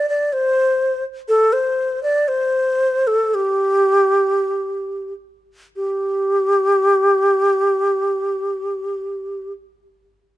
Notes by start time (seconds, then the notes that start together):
0.09 D5
0.33 C5
1.28 A4
1.53 C5
2.03 D5
2.28 C5
3.07 A4
3.35 G4
5.76 G4